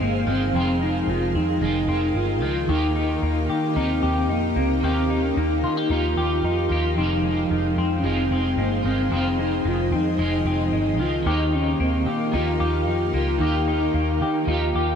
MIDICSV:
0, 0, Header, 1, 6, 480
1, 0, Start_track
1, 0, Key_signature, -4, "minor"
1, 0, Tempo, 535714
1, 488, Time_signature, 4, 2, 24, 8
1, 13398, End_track
2, 0, Start_track
2, 0, Title_t, "Ambient pad"
2, 0, Program_c, 0, 92
2, 0, Note_on_c, 0, 63, 92
2, 0, Note_on_c, 0, 68, 87
2, 0, Note_on_c, 0, 72, 87
2, 0, Note_on_c, 0, 77, 93
2, 473, Note_off_c, 0, 72, 0
2, 488, Note_on_c, 0, 70, 85
2, 2376, Note_off_c, 0, 77, 0
2, 2377, Note_off_c, 0, 68, 0
2, 2406, Note_on_c, 0, 67, 91
2, 2406, Note_on_c, 0, 77, 92
2, 6212, Note_off_c, 0, 67, 0
2, 6213, Note_off_c, 0, 70, 0
2, 6249, Note_on_c, 0, 72, 83
2, 6250, Note_on_c, 0, 68, 77
2, 8131, Note_off_c, 0, 77, 0
2, 8170, Note_on_c, 0, 75, 104
2, 10053, Note_off_c, 0, 68, 0
2, 10053, Note_off_c, 0, 72, 0
2, 10058, Note_off_c, 0, 63, 0
2, 10070, Note_off_c, 0, 75, 0
2, 10081, Note_on_c, 0, 77, 92
2, 10083, Note_on_c, 0, 63, 89
2, 10083, Note_on_c, 0, 67, 80
2, 10084, Note_on_c, 0, 70, 86
2, 13398, Note_off_c, 0, 63, 0
2, 13398, Note_off_c, 0, 67, 0
2, 13398, Note_off_c, 0, 70, 0
2, 13398, Note_off_c, 0, 77, 0
2, 13398, End_track
3, 0, Start_track
3, 0, Title_t, "Soft synth lead"
3, 0, Program_c, 1, 80
3, 25, Note_on_c, 1, 58, 94
3, 266, Note_on_c, 1, 60, 90
3, 279, Note_off_c, 1, 58, 0
3, 497, Note_off_c, 1, 60, 0
3, 506, Note_on_c, 1, 60, 105
3, 740, Note_on_c, 1, 63, 98
3, 754, Note_off_c, 1, 60, 0
3, 984, Note_on_c, 1, 65, 113
3, 997, Note_off_c, 1, 63, 0
3, 1218, Note_on_c, 1, 63, 127
3, 1231, Note_off_c, 1, 65, 0
3, 1941, Note_on_c, 1, 65, 102
3, 1955, Note_off_c, 1, 63, 0
3, 2175, Note_off_c, 1, 65, 0
3, 2179, Note_on_c, 1, 65, 100
3, 2423, Note_on_c, 1, 63, 118
3, 2437, Note_off_c, 1, 65, 0
3, 2893, Note_off_c, 1, 63, 0
3, 2898, Note_on_c, 1, 63, 102
3, 3380, Note_on_c, 1, 60, 104
3, 3394, Note_off_c, 1, 63, 0
3, 3862, Note_on_c, 1, 58, 92
3, 3875, Note_off_c, 1, 60, 0
3, 4105, Note_on_c, 1, 60, 83
3, 4119, Note_off_c, 1, 58, 0
3, 4337, Note_off_c, 1, 60, 0
3, 4349, Note_on_c, 1, 60, 109
3, 4704, Note_on_c, 1, 61, 92
3, 4718, Note_off_c, 1, 60, 0
3, 4820, Note_on_c, 1, 63, 102
3, 4834, Note_off_c, 1, 61, 0
3, 5297, Note_on_c, 1, 65, 100
3, 5311, Note_off_c, 1, 63, 0
3, 5768, Note_off_c, 1, 65, 0
3, 5773, Note_on_c, 1, 65, 109
3, 5994, Note_off_c, 1, 65, 0
3, 6008, Note_on_c, 1, 65, 101
3, 6250, Note_on_c, 1, 63, 104
3, 6264, Note_off_c, 1, 65, 0
3, 6727, Note_off_c, 1, 63, 0
3, 6732, Note_on_c, 1, 63, 101
3, 7161, Note_on_c, 1, 61, 68
3, 7174, Note_off_c, 1, 63, 0
3, 7229, Note_on_c, 1, 60, 110
3, 7242, Note_off_c, 1, 61, 0
3, 7710, Note_on_c, 1, 58, 87
3, 7724, Note_off_c, 1, 60, 0
3, 7946, Note_on_c, 1, 60, 80
3, 7959, Note_off_c, 1, 58, 0
3, 8177, Note_off_c, 1, 60, 0
3, 8187, Note_on_c, 1, 60, 98
3, 8402, Note_off_c, 1, 60, 0
3, 8431, Note_on_c, 1, 63, 94
3, 8674, Note_on_c, 1, 65, 97
3, 8688, Note_off_c, 1, 63, 0
3, 8913, Note_on_c, 1, 63, 109
3, 8926, Note_off_c, 1, 65, 0
3, 9621, Note_off_c, 1, 63, 0
3, 9625, Note_on_c, 1, 63, 102
3, 9868, Note_on_c, 1, 65, 88
3, 9881, Note_off_c, 1, 63, 0
3, 10097, Note_on_c, 1, 63, 101
3, 10110, Note_off_c, 1, 65, 0
3, 10344, Note_on_c, 1, 61, 96
3, 10357, Note_off_c, 1, 63, 0
3, 10576, Note_off_c, 1, 61, 0
3, 10587, Note_on_c, 1, 60, 80
3, 10823, Note_on_c, 1, 58, 91
3, 10836, Note_off_c, 1, 60, 0
3, 11063, Note_on_c, 1, 65, 107
3, 11077, Note_off_c, 1, 58, 0
3, 11536, Note_off_c, 1, 65, 0
3, 11540, Note_on_c, 1, 65, 97
3, 11758, Note_off_c, 1, 65, 0
3, 11778, Note_on_c, 1, 65, 94
3, 12011, Note_on_c, 1, 63, 100
3, 12024, Note_off_c, 1, 65, 0
3, 12730, Note_off_c, 1, 63, 0
3, 12738, Note_on_c, 1, 63, 102
3, 12957, Note_off_c, 1, 63, 0
3, 12982, Note_on_c, 1, 65, 99
3, 13398, Note_off_c, 1, 65, 0
3, 13398, End_track
4, 0, Start_track
4, 0, Title_t, "Clean electric guitar"
4, 0, Program_c, 2, 27
4, 0, Note_on_c, 2, 51, 42
4, 0, Note_on_c, 2, 56, 44
4, 0, Note_on_c, 2, 60, 55
4, 0, Note_on_c, 2, 65, 51
4, 235, Note_off_c, 2, 65, 0
4, 239, Note_on_c, 2, 65, 48
4, 248, Note_off_c, 2, 60, 0
4, 258, Note_off_c, 2, 56, 0
4, 259, Note_on_c, 2, 60, 45
4, 277, Note_on_c, 2, 56, 41
4, 285, Note_off_c, 2, 51, 0
4, 288, Note_on_c, 2, 51, 35
4, 468, Note_on_c, 2, 41, 81
4, 484, Note_off_c, 2, 65, 0
4, 484, Note_on_c, 2, 53, 80
4, 491, Note_off_c, 2, 51, 0
4, 494, Note_off_c, 2, 60, 0
4, 502, Note_on_c, 2, 51, 90
4, 503, Note_off_c, 2, 56, 0
4, 519, Note_on_c, 2, 56, 75
4, 532, Note_on_c, 2, 60, 93
4, 545, Note_on_c, 2, 65, 81
4, 1430, Note_off_c, 2, 41, 0
4, 1441, Note_on_c, 2, 41, 78
4, 1443, Note_off_c, 2, 53, 0
4, 1447, Note_on_c, 2, 53, 74
4, 1452, Note_off_c, 2, 51, 0
4, 1453, Note_off_c, 2, 56, 0
4, 1456, Note_on_c, 2, 51, 76
4, 1459, Note_off_c, 2, 60, 0
4, 1463, Note_on_c, 2, 56, 91
4, 1469, Note_on_c, 2, 60, 92
4, 1471, Note_off_c, 2, 65, 0
4, 1475, Note_on_c, 2, 65, 84
4, 1663, Note_off_c, 2, 65, 0
4, 1674, Note_on_c, 2, 65, 50
4, 1682, Note_off_c, 2, 60, 0
4, 1685, Note_off_c, 2, 41, 0
4, 1688, Note_off_c, 2, 53, 0
4, 1692, Note_off_c, 2, 51, 0
4, 1693, Note_on_c, 2, 60, 47
4, 1696, Note_off_c, 2, 56, 0
4, 1710, Note_on_c, 2, 56, 50
4, 1725, Note_on_c, 2, 51, 45
4, 2152, Note_off_c, 2, 65, 0
4, 2156, Note_on_c, 2, 65, 52
4, 2164, Note_off_c, 2, 60, 0
4, 2175, Note_on_c, 2, 60, 45
4, 2179, Note_off_c, 2, 56, 0
4, 2189, Note_on_c, 2, 56, 38
4, 2202, Note_off_c, 2, 51, 0
4, 2206, Note_on_c, 2, 51, 42
4, 2373, Note_off_c, 2, 51, 0
4, 2384, Note_on_c, 2, 51, 75
4, 2402, Note_off_c, 2, 65, 0
4, 2408, Note_on_c, 2, 58, 77
4, 2412, Note_off_c, 2, 60, 0
4, 2419, Note_off_c, 2, 56, 0
4, 2427, Note_on_c, 2, 63, 89
4, 2448, Note_on_c, 2, 67, 83
4, 2464, Note_on_c, 2, 65, 97
4, 3346, Note_off_c, 2, 51, 0
4, 3350, Note_on_c, 2, 51, 76
4, 3358, Note_off_c, 2, 58, 0
4, 3369, Note_on_c, 2, 58, 87
4, 3387, Note_off_c, 2, 63, 0
4, 3388, Note_off_c, 2, 67, 0
4, 3391, Note_on_c, 2, 63, 76
4, 3410, Note_on_c, 2, 67, 95
4, 3418, Note_off_c, 2, 65, 0
4, 3429, Note_on_c, 2, 65, 75
4, 4300, Note_off_c, 2, 51, 0
4, 4303, Note_on_c, 2, 51, 87
4, 4318, Note_off_c, 2, 58, 0
4, 4328, Note_on_c, 2, 58, 85
4, 4344, Note_off_c, 2, 63, 0
4, 4347, Note_on_c, 2, 63, 91
4, 4349, Note_off_c, 2, 67, 0
4, 4367, Note_on_c, 2, 67, 72
4, 4374, Note_off_c, 2, 65, 0
4, 4383, Note_on_c, 2, 65, 87
4, 5279, Note_off_c, 2, 51, 0
4, 5283, Note_on_c, 2, 51, 78
4, 5285, Note_off_c, 2, 58, 0
4, 5296, Note_on_c, 2, 58, 73
4, 5300, Note_off_c, 2, 63, 0
4, 5300, Note_off_c, 2, 67, 0
4, 5304, Note_on_c, 2, 63, 78
4, 5310, Note_off_c, 2, 65, 0
4, 5310, Note_on_c, 2, 67, 75
4, 5317, Note_on_c, 2, 65, 93
4, 5509, Note_off_c, 2, 65, 0
4, 5519, Note_on_c, 2, 65, 53
4, 5526, Note_off_c, 2, 51, 0
4, 5532, Note_off_c, 2, 58, 0
4, 5536, Note_off_c, 2, 63, 0
4, 5539, Note_off_c, 2, 67, 0
4, 5549, Note_on_c, 2, 67, 49
4, 5571, Note_on_c, 2, 63, 43
4, 5991, Note_off_c, 2, 65, 0
4, 5995, Note_on_c, 2, 65, 49
4, 6010, Note_off_c, 2, 67, 0
4, 6020, Note_on_c, 2, 67, 51
4, 6041, Note_off_c, 2, 63, 0
4, 6045, Note_on_c, 2, 63, 39
4, 6224, Note_on_c, 2, 41, 78
4, 6242, Note_off_c, 2, 65, 0
4, 6244, Note_on_c, 2, 53, 76
4, 6254, Note_off_c, 2, 67, 0
4, 6262, Note_on_c, 2, 51, 78
4, 6267, Note_off_c, 2, 63, 0
4, 6273, Note_on_c, 2, 56, 75
4, 6289, Note_on_c, 2, 60, 83
4, 6303, Note_on_c, 2, 65, 84
4, 7184, Note_off_c, 2, 41, 0
4, 7195, Note_on_c, 2, 41, 76
4, 7198, Note_off_c, 2, 53, 0
4, 7202, Note_on_c, 2, 53, 88
4, 7205, Note_off_c, 2, 51, 0
4, 7205, Note_off_c, 2, 56, 0
4, 7209, Note_on_c, 2, 51, 81
4, 7213, Note_off_c, 2, 60, 0
4, 7216, Note_on_c, 2, 56, 80
4, 7224, Note_on_c, 2, 60, 94
4, 7225, Note_off_c, 2, 65, 0
4, 7228, Note_on_c, 2, 65, 86
4, 7418, Note_off_c, 2, 65, 0
4, 7429, Note_on_c, 2, 65, 46
4, 7438, Note_off_c, 2, 60, 0
4, 7442, Note_off_c, 2, 41, 0
4, 7445, Note_off_c, 2, 53, 0
4, 7449, Note_off_c, 2, 51, 0
4, 7449, Note_on_c, 2, 60, 52
4, 7452, Note_off_c, 2, 56, 0
4, 7465, Note_on_c, 2, 56, 44
4, 7479, Note_on_c, 2, 51, 45
4, 7904, Note_off_c, 2, 65, 0
4, 7907, Note_on_c, 2, 65, 54
4, 7916, Note_off_c, 2, 60, 0
4, 7926, Note_on_c, 2, 60, 43
4, 7930, Note_off_c, 2, 56, 0
4, 7941, Note_on_c, 2, 56, 47
4, 7953, Note_off_c, 2, 51, 0
4, 7957, Note_on_c, 2, 51, 47
4, 8138, Note_on_c, 2, 41, 71
4, 8155, Note_on_c, 2, 53, 91
4, 8158, Note_off_c, 2, 65, 0
4, 8162, Note_off_c, 2, 51, 0
4, 8167, Note_off_c, 2, 60, 0
4, 8173, Note_on_c, 2, 51, 74
4, 8175, Note_off_c, 2, 56, 0
4, 8185, Note_on_c, 2, 56, 92
4, 8200, Note_on_c, 2, 60, 95
4, 8214, Note_on_c, 2, 65, 78
4, 9102, Note_off_c, 2, 41, 0
4, 9113, Note_on_c, 2, 41, 87
4, 9115, Note_off_c, 2, 53, 0
4, 9118, Note_on_c, 2, 53, 79
4, 9124, Note_off_c, 2, 56, 0
4, 9126, Note_off_c, 2, 51, 0
4, 9128, Note_off_c, 2, 60, 0
4, 9129, Note_on_c, 2, 51, 76
4, 9135, Note_on_c, 2, 56, 95
4, 9138, Note_on_c, 2, 60, 83
4, 9146, Note_off_c, 2, 65, 0
4, 9149, Note_on_c, 2, 65, 87
4, 9830, Note_off_c, 2, 65, 0
4, 9833, Note_on_c, 2, 65, 51
4, 9841, Note_off_c, 2, 41, 0
4, 9841, Note_off_c, 2, 60, 0
4, 9852, Note_off_c, 2, 56, 0
4, 9852, Note_on_c, 2, 60, 50
4, 9860, Note_off_c, 2, 51, 0
4, 9865, Note_on_c, 2, 56, 46
4, 9883, Note_on_c, 2, 51, 40
4, 9910, Note_off_c, 2, 53, 0
4, 10046, Note_off_c, 2, 51, 0
4, 10057, Note_on_c, 2, 51, 86
4, 10081, Note_off_c, 2, 65, 0
4, 10085, Note_on_c, 2, 58, 75
4, 10090, Note_off_c, 2, 60, 0
4, 10097, Note_off_c, 2, 56, 0
4, 10100, Note_on_c, 2, 63, 80
4, 10121, Note_on_c, 2, 67, 85
4, 10137, Note_on_c, 2, 65, 99
4, 11033, Note_off_c, 2, 51, 0
4, 11036, Note_on_c, 2, 51, 79
4, 11038, Note_off_c, 2, 58, 0
4, 11049, Note_on_c, 2, 58, 78
4, 11055, Note_off_c, 2, 63, 0
4, 11056, Note_off_c, 2, 67, 0
4, 11058, Note_on_c, 2, 63, 89
4, 11063, Note_off_c, 2, 65, 0
4, 11066, Note_on_c, 2, 67, 89
4, 11073, Note_on_c, 2, 65, 84
4, 11753, Note_off_c, 2, 65, 0
4, 11757, Note_on_c, 2, 65, 47
4, 11769, Note_off_c, 2, 58, 0
4, 11777, Note_off_c, 2, 67, 0
4, 11784, Note_off_c, 2, 51, 0
4, 11784, Note_off_c, 2, 63, 0
4, 11789, Note_on_c, 2, 67, 45
4, 11807, Note_on_c, 2, 63, 37
4, 11989, Note_on_c, 2, 51, 75
4, 12003, Note_off_c, 2, 65, 0
4, 12012, Note_on_c, 2, 58, 78
4, 12019, Note_off_c, 2, 67, 0
4, 12023, Note_off_c, 2, 63, 0
4, 12033, Note_on_c, 2, 63, 79
4, 12049, Note_on_c, 2, 67, 85
4, 12066, Note_on_c, 2, 65, 99
4, 12946, Note_off_c, 2, 51, 0
4, 12950, Note_on_c, 2, 51, 84
4, 12962, Note_off_c, 2, 58, 0
4, 12973, Note_on_c, 2, 58, 72
4, 12986, Note_off_c, 2, 63, 0
4, 12989, Note_off_c, 2, 67, 0
4, 12990, Note_on_c, 2, 63, 80
4, 13011, Note_on_c, 2, 67, 89
4, 13017, Note_off_c, 2, 65, 0
4, 13024, Note_on_c, 2, 65, 80
4, 13398, Note_off_c, 2, 51, 0
4, 13398, Note_off_c, 2, 58, 0
4, 13398, Note_off_c, 2, 63, 0
4, 13398, Note_off_c, 2, 65, 0
4, 13398, Note_off_c, 2, 67, 0
4, 13398, End_track
5, 0, Start_track
5, 0, Title_t, "Clean electric guitar"
5, 0, Program_c, 3, 27
5, 0, Note_on_c, 3, 41, 79
5, 0, Note_on_c, 3, 51, 62
5, 0, Note_on_c, 3, 60, 67
5, 13, Note_on_c, 3, 56, 65
5, 242, Note_off_c, 3, 51, 0
5, 245, Note_on_c, 3, 51, 71
5, 484, Note_off_c, 3, 41, 0
5, 491, Note_off_c, 3, 60, 0
5, 495, Note_on_c, 3, 41, 84
5, 501, Note_on_c, 3, 60, 73
5, 721, Note_off_c, 3, 56, 0
5, 732, Note_on_c, 3, 56, 55
5, 975, Note_off_c, 3, 51, 0
5, 979, Note_on_c, 3, 51, 68
5, 1199, Note_off_c, 3, 60, 0
5, 1210, Note_on_c, 3, 60, 66
5, 1442, Note_off_c, 3, 56, 0
5, 1452, Note_on_c, 3, 56, 67
5, 1678, Note_off_c, 3, 60, 0
5, 1689, Note_on_c, 3, 60, 68
5, 1920, Note_off_c, 3, 56, 0
5, 1930, Note_on_c, 3, 56, 57
5, 2164, Note_off_c, 3, 51, 0
5, 2168, Note_on_c, 3, 51, 67
5, 2405, Note_off_c, 3, 51, 0
5, 2405, Note_on_c, 3, 51, 78
5, 2411, Note_on_c, 3, 67, 69
5, 2412, Note_off_c, 3, 41, 0
5, 2457, Note_off_c, 3, 56, 0
5, 2457, Note_off_c, 3, 60, 0
5, 2648, Note_on_c, 3, 63, 59
5, 2890, Note_on_c, 3, 58, 66
5, 3122, Note_off_c, 3, 67, 0
5, 3132, Note_on_c, 3, 67, 64
5, 3367, Note_off_c, 3, 63, 0
5, 3371, Note_on_c, 3, 63, 72
5, 3597, Note_off_c, 3, 67, 0
5, 3608, Note_on_c, 3, 67, 77
5, 3844, Note_off_c, 3, 63, 0
5, 3848, Note_on_c, 3, 63, 62
5, 4078, Note_off_c, 3, 58, 0
5, 4088, Note_on_c, 3, 58, 76
5, 4327, Note_off_c, 3, 51, 0
5, 4328, Note_off_c, 3, 67, 0
5, 4331, Note_on_c, 3, 51, 73
5, 4340, Note_on_c, 3, 67, 62
5, 4566, Note_off_c, 3, 63, 0
5, 4569, Note_on_c, 3, 63, 57
5, 4802, Note_off_c, 3, 58, 0
5, 4813, Note_on_c, 3, 58, 72
5, 5048, Note_off_c, 3, 67, 0
5, 5052, Note_on_c, 3, 65, 68
5, 5172, Note_off_c, 3, 65, 0
5, 5172, Note_on_c, 3, 67, 61
5, 5291, Note_off_c, 3, 63, 0
5, 5294, Note_on_c, 3, 63, 66
5, 5522, Note_off_c, 3, 67, 0
5, 5532, Note_on_c, 3, 67, 73
5, 5771, Note_off_c, 3, 63, 0
5, 5775, Note_on_c, 3, 63, 64
5, 6006, Note_off_c, 3, 58, 0
5, 6017, Note_on_c, 3, 58, 66
5, 6251, Note_off_c, 3, 63, 0
5, 6251, Note_on_c, 3, 41, 75
5, 6255, Note_on_c, 3, 60, 74
5, 6278, Note_off_c, 3, 51, 0
5, 6298, Note_off_c, 3, 67, 0
5, 6301, Note_off_c, 3, 58, 0
5, 6490, Note_on_c, 3, 56, 59
5, 6731, Note_on_c, 3, 51, 60
5, 6962, Note_off_c, 3, 60, 0
5, 6973, Note_on_c, 3, 60, 64
5, 7204, Note_off_c, 3, 56, 0
5, 7215, Note_on_c, 3, 56, 66
5, 7443, Note_off_c, 3, 60, 0
5, 7454, Note_on_c, 3, 60, 77
5, 7680, Note_off_c, 3, 56, 0
5, 7691, Note_on_c, 3, 56, 62
5, 7930, Note_off_c, 3, 51, 0
5, 7933, Note_on_c, 3, 51, 73
5, 8158, Note_off_c, 3, 41, 0
5, 8162, Note_off_c, 3, 60, 0
5, 8169, Note_on_c, 3, 41, 81
5, 8173, Note_on_c, 3, 60, 72
5, 8403, Note_off_c, 3, 56, 0
5, 8413, Note_on_c, 3, 56, 59
5, 8646, Note_off_c, 3, 51, 0
5, 8649, Note_on_c, 3, 51, 65
5, 8879, Note_off_c, 3, 60, 0
5, 8890, Note_on_c, 3, 60, 66
5, 9120, Note_off_c, 3, 56, 0
5, 9131, Note_on_c, 3, 56, 76
5, 9363, Note_off_c, 3, 60, 0
5, 9374, Note_on_c, 3, 60, 76
5, 9600, Note_off_c, 3, 56, 0
5, 9611, Note_on_c, 3, 56, 68
5, 9848, Note_off_c, 3, 51, 0
5, 9852, Note_on_c, 3, 51, 76
5, 10089, Note_off_c, 3, 41, 0
5, 10091, Note_off_c, 3, 51, 0
5, 10091, Note_on_c, 3, 51, 88
5, 10096, Note_on_c, 3, 67, 75
5, 10138, Note_off_c, 3, 56, 0
5, 10139, Note_off_c, 3, 60, 0
5, 10328, Note_on_c, 3, 63, 60
5, 10572, Note_on_c, 3, 58, 70
5, 10797, Note_off_c, 3, 67, 0
5, 10808, Note_on_c, 3, 67, 62
5, 11047, Note_off_c, 3, 63, 0
5, 11051, Note_on_c, 3, 63, 68
5, 11280, Note_off_c, 3, 67, 0
5, 11291, Note_on_c, 3, 67, 73
5, 11531, Note_off_c, 3, 63, 0
5, 11534, Note_on_c, 3, 63, 66
5, 11763, Note_off_c, 3, 58, 0
5, 11774, Note_on_c, 3, 58, 73
5, 12005, Note_off_c, 3, 51, 0
5, 12007, Note_off_c, 3, 67, 0
5, 12008, Note_on_c, 3, 51, 78
5, 12018, Note_on_c, 3, 67, 74
5, 12251, Note_off_c, 3, 63, 0
5, 12255, Note_on_c, 3, 63, 59
5, 12485, Note_off_c, 3, 58, 0
5, 12496, Note_on_c, 3, 58, 68
5, 12730, Note_off_c, 3, 67, 0
5, 12741, Note_on_c, 3, 67, 67
5, 12971, Note_off_c, 3, 63, 0
5, 12974, Note_on_c, 3, 63, 70
5, 13210, Note_off_c, 3, 67, 0
5, 13221, Note_on_c, 3, 67, 73
5, 13398, Note_off_c, 3, 51, 0
5, 13398, Note_off_c, 3, 58, 0
5, 13398, Note_off_c, 3, 63, 0
5, 13398, Note_off_c, 3, 67, 0
5, 13398, End_track
6, 0, Start_track
6, 0, Title_t, "Picked electric bass"
6, 0, Program_c, 4, 34
6, 10, Note_on_c, 4, 31, 75
6, 220, Note_off_c, 4, 31, 0
6, 245, Note_on_c, 4, 31, 101
6, 457, Note_off_c, 4, 31, 0
6, 485, Note_on_c, 4, 29, 93
6, 909, Note_off_c, 4, 29, 0
6, 964, Note_on_c, 4, 29, 105
6, 1210, Note_on_c, 4, 41, 92
6, 1223, Note_off_c, 4, 29, 0
6, 1420, Note_off_c, 4, 41, 0
6, 1444, Note_on_c, 4, 29, 99
6, 1657, Note_off_c, 4, 29, 0
6, 1685, Note_on_c, 4, 29, 97
6, 1898, Note_off_c, 4, 29, 0
6, 1922, Note_on_c, 4, 31, 79
6, 2168, Note_off_c, 4, 31, 0
6, 2168, Note_on_c, 4, 37, 100
6, 2379, Note_off_c, 4, 37, 0
6, 2408, Note_on_c, 4, 39, 94
6, 2831, Note_off_c, 4, 39, 0
6, 2891, Note_on_c, 4, 39, 104
6, 3101, Note_off_c, 4, 39, 0
6, 3132, Note_on_c, 4, 51, 93
6, 3373, Note_on_c, 4, 39, 93
6, 3386, Note_off_c, 4, 51, 0
6, 3582, Note_off_c, 4, 39, 0
6, 3609, Note_on_c, 4, 39, 106
6, 3846, Note_off_c, 4, 39, 0
6, 3846, Note_on_c, 4, 41, 92
6, 4059, Note_off_c, 4, 41, 0
6, 4086, Note_on_c, 4, 37, 93
6, 4298, Note_off_c, 4, 37, 0
6, 4329, Note_on_c, 4, 39, 91
6, 4751, Note_off_c, 4, 39, 0
6, 4812, Note_on_c, 4, 39, 103
6, 5048, Note_on_c, 4, 51, 97
6, 5061, Note_off_c, 4, 39, 0
6, 5259, Note_off_c, 4, 51, 0
6, 5286, Note_on_c, 4, 39, 114
6, 5498, Note_off_c, 4, 39, 0
6, 5526, Note_on_c, 4, 39, 103
6, 5738, Note_off_c, 4, 39, 0
6, 5763, Note_on_c, 4, 41, 90
6, 5976, Note_off_c, 4, 41, 0
6, 6004, Note_on_c, 4, 39, 86
6, 6217, Note_off_c, 4, 39, 0
6, 6245, Note_on_c, 4, 29, 104
6, 6669, Note_off_c, 4, 29, 0
6, 6728, Note_on_c, 4, 29, 95
6, 6939, Note_off_c, 4, 29, 0
6, 6963, Note_on_c, 4, 41, 101
6, 7177, Note_off_c, 4, 41, 0
6, 7199, Note_on_c, 4, 29, 102
6, 7414, Note_off_c, 4, 29, 0
6, 7445, Note_on_c, 4, 29, 98
6, 7657, Note_off_c, 4, 29, 0
6, 7684, Note_on_c, 4, 31, 80
6, 7897, Note_off_c, 4, 31, 0
6, 7923, Note_on_c, 4, 31, 103
6, 8137, Note_off_c, 4, 31, 0
6, 8168, Note_on_c, 4, 29, 97
6, 8591, Note_off_c, 4, 29, 0
6, 8650, Note_on_c, 4, 29, 105
6, 8884, Note_on_c, 4, 41, 97
6, 8898, Note_off_c, 4, 29, 0
6, 9097, Note_off_c, 4, 41, 0
6, 9127, Note_on_c, 4, 29, 98
6, 9339, Note_off_c, 4, 29, 0
6, 9367, Note_on_c, 4, 29, 107
6, 9579, Note_off_c, 4, 29, 0
6, 9610, Note_on_c, 4, 31, 84
6, 9852, Note_off_c, 4, 31, 0
6, 9852, Note_on_c, 4, 37, 105
6, 10061, Note_off_c, 4, 37, 0
6, 10092, Note_on_c, 4, 39, 113
6, 10513, Note_off_c, 4, 39, 0
6, 10573, Note_on_c, 4, 39, 105
6, 10782, Note_off_c, 4, 39, 0
6, 10815, Note_on_c, 4, 51, 105
6, 11054, Note_on_c, 4, 39, 93
6, 11067, Note_off_c, 4, 51, 0
6, 11263, Note_off_c, 4, 39, 0
6, 11291, Note_on_c, 4, 39, 104
6, 11529, Note_off_c, 4, 39, 0
6, 11529, Note_on_c, 4, 41, 101
6, 11740, Note_off_c, 4, 41, 0
6, 11772, Note_on_c, 4, 37, 84
6, 11982, Note_off_c, 4, 37, 0
6, 12008, Note_on_c, 4, 39, 84
6, 12431, Note_off_c, 4, 39, 0
6, 12491, Note_on_c, 4, 39, 96
6, 12726, Note_on_c, 4, 51, 105
6, 12740, Note_off_c, 4, 39, 0
6, 12938, Note_off_c, 4, 51, 0
6, 12968, Note_on_c, 4, 39, 113
6, 13180, Note_off_c, 4, 39, 0
6, 13212, Note_on_c, 4, 39, 96
6, 13398, Note_off_c, 4, 39, 0
6, 13398, End_track
0, 0, End_of_file